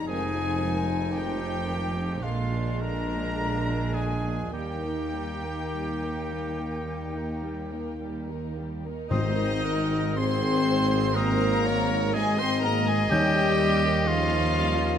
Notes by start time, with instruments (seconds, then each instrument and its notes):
Already playing: french horn section D#4
0.07 tuba F1, double bass section F1, cello section F2, viola section D#3 G#3, french horn section F3, bassoon F3, violin section C4 F4 G#5, clarinet D#4, cor anglais G#4, flute G#5
0.33 viola section F3 C4, violin section D#4 G#4
0.59 viola section D#3 G#3, violin section C4 F4
0.86 viola section F3 C4, violin section D#4 G#4
1.12 viola section D#3 G#3, violin section C4 F4 G5, cor anglais G4, flute G5
1.38 viola section F3 C4, violin section D#4 G#4
1.66 viola section D#3 G#3, violin section C4 F4
1.94 viola section F3 C4, violin section D#4 G#4
2.22 double bass section A#1, tuba A#1, cello section A#2, viola section D3 G#3, french horn section G#3 D4, bassoon G#3, violin section A#3 F4 F5, clarinet D4, cor anglais F4, flute F5
2.52 viola section F3 A#3, violin section D4 G#4
2.81 viola section D3 G#3, violin section A#3 F4 A#5, cor anglais A#4, flute A#5
3.10 viola section F3 A#3, violin section D4 G#4
3.38 viola section D3 G#3, violin section A#3 F4
3.66 viola section F3 A#3, violin section D4 G#4
3.94 viola section D3 G#3, violin section A#3 F4 G#5, cor anglais G#4, flute G#5
4.24 viola section F3 A#3, violin section D4 G#4
4.52 double bass section D#2, cello section D#2, tuba D#2, viola section G3, french horn section A#3 D#4, bassoon A#3, violin section A#3 G4 G5, clarinet D#4, cor anglais G4, flute G5
4.84 viola section D#3 A#3, violin section D#4 A#4
5.13 viola section G3, violin section A#3 G4
5.43 viola section D#3 A#3, violin section D#4 A#4
5.72 viola section G3, violin section A#3 G4
6.00 viola section D#3 A#3, violin section D#4 A#4
6.30 viola section G3, violin section A#3 G4
6.58 viola section D#3 A#3, violin section D#4 A#4
6.86 viola section G3, violin section A#3 G4
7.14 viola section D#3 A#3, violin section D#4 A#4
7.42 viola section G3, violin section A#3 G4
7.71 viola section D#3 A#3, violin section D#4 A#4
7.99 viola section G3, violin section A#3 G4
8.28 viola section D#3 A#3, violin section D#4 A#4
8.57 viola section G3, violin section A#3 G4
8.84 viola section D#3 A#3, violin section D#4 A#4
9.10 tuba G#1, double bass section G#1, cello section G#2, timpani G#2, viola section C3 C4, french horn section D#3, bassoon C4, cor anglais D#4, violin section D#4 D#5, clarinet C5, flute D#6
9.36 viola section D#3
9.64 viola section G#3, clarinet A#4
9.92 viola section D#3
10.17 viola section C3, french horn section C4, clarinet G#4, cor anglais C5, violin section C5 C6
10.44 viola section D#3
10.67 viola section G#3
10.92 viola section D#3
11.14 viola section C3, french horn section A#3, bassoon C4, cor anglais A#4, violin section A#4 A#5, clarinet C5, flute D#6
11.42 viola section D#3
11.66 viola section G#3, clarinet C#5
11.92 viola section D#3
12.14 viola section C3, french horn section G#3, cor anglais G#4, violin section G#4 G#5, clarinet D#5
12.38 viola section D#3, french horn section C4, cor anglais C5, violin section C5 C6
12.62 viola section G#3, french horn section A#3, cor anglais A#4, violin section A#4 A#5
12.86 viola section D#3, french horn section G#3, violin section G#4 G#5, cor anglais G#4
13.11 tuba D#2, double bass section D#2, cello section D#2, viola section C#3 C#4, timpani D#3, french horn section G3, bassoon C#4, cor anglais G4, violin section G4 G5, flute G6
13.36 viola section D#3
13.61 viola section G3
13.84 viola section D#3
14.07 viola section C#3, french horn section F3, cor anglais F4, violin section F4 F5
14.31 viola section D#3
14.55 viola section G3
14.78 viola section D#3